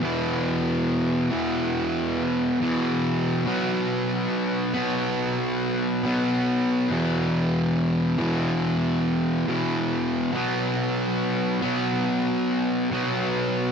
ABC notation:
X:1
M:4/4
L:1/8
Q:1/4=70
K:Bmix
V:1 name="Distorted electric guitar" clef=bass
[E,,B,,E,]3 [E,,B,,E,]3 [E,,B,,E,]2 | [B,,F,B,]3 [B,,F,B,]3 [B,,F,B,]2 | [E,,B,,E,]3 [E,,B,,E,]3 [E,,B,,E,]2 | [B,,F,B,]3 [B,,F,B,]3 [B,,F,B,]2 |]